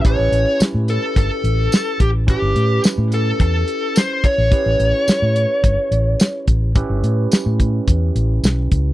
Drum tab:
HH |xxxxxxxx|xxxxxxxx|xxxxxxxx|xxxxxxxx|
TB |--x---x-|--x---x-|--x---x-|--x---x-|
SD |--o---o-|--o---o-|--o---o-|--o---o-|
BD |o---o--o|o---o--o|o---o--o|o--oo--o|